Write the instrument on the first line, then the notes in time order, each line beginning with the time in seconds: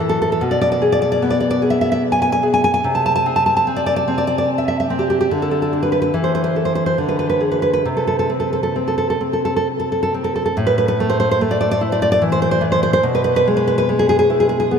nylon-string guitar
Already playing: A2
0.00 E3
0.09 A4
0.22 A4
0.32 A4
0.41 B2
0.51 D5
0.61 D5
0.72 D5
0.82 G#4
0.92 D5
1.02 D5
1.12 D5
1.22 B3
1.30 D5
1.40 D5
1.51 D5
1.62 G#4
1.70 E5
1.81 E5
1.92 E5
2.12 G#5
2.22 G#5
2.32 G#5
2.43 G#4
2.54 G#5
2.64 G#5
2.74 G#5
2.84 C3
2.95 A5
3.06 A5
3.16 A5
3.26 C4
3.36 A5
3.46 A5
3.57 A5
3.67 C4
3.76 D5
3.86 D5
3.96 D5
4.08 C4
4.18 D5
4.27 D5
4.38 D5
4.58 E5
4.68 E5
4.80 E5
4.90 C4
4.99 G4
5.10 G4
5.21 G4
5.31 D3
5.42 A4
5.51 A4
5.62 A4
5.73 D4
5.83 B4
5.92 B4
6.02 B4
6.14 E3
6.24 C5
6.35 C5
6.44 C5
6.56 A4
6.65 C5
6.75 C5
6.86 C5
6.98 D3
7.09 B4
7.19 B4
7.29 B4
7.41 G#4
7.51 B4
7.62 B4
7.73 B4
7.85 C3
7.97 A4
8.07 A4
8.19 A4
8.30 C4
8.40 A4
8.53 A4
8.63 A4
8.76 C4
8.88 A4
8.98 A4
9.10 A4
9.21 C4
9.33 A4
9.45 A4
9.56 A4
9.80 A4
9.92 A4
10.03 A4
10.14 C4
10.24 A4
10.36 A4
10.46 A4
10.57 A2
10.67 B4
10.78 B4
10.88 B4
11.00 A3
11.10 C5
11.20 C5
11.31 C5
11.41 A3
11.51 D5
11.61 D5
11.71 D5
11.81 E4
11.92 D5
12.02 D5
12.12 D5
12.22 E3
12.32 C5
12.42 C5
12.51 C5
12.61 E3
12.72 C5
12.83 C5
12.93 C5
13.03 B2
13.15 B4
13.24 B4
13.36 B4
13.47 G#3
13.57 B4
13.68 B4
13.78 B4
13.89 G#3
13.99 G#4
14.09 G#4
14.19 G#4
14.30 E4
14.40 G#4
14.49 G#4
14.60 G#4
14.71 B3